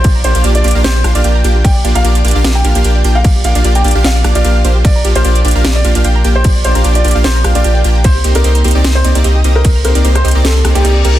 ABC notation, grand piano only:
X:1
M:4/4
L:1/16
Q:"Swing 16ths" 1/4=150
K:Bb
V:1 name="Grand piano"
c z c2 z d2 z c2 z d2 z3 | g2 z f2 z4 g2 z4 f- | f z f2 z g2 z f2 z d2 z3 | d2 z c2 z4 d2 z4 c- |
c z c2 z d2 z c2 z d2 z3 | c2 z B2 z4 c2 z4 B- | B z B2 z c2 z A2 z G2 z3 |]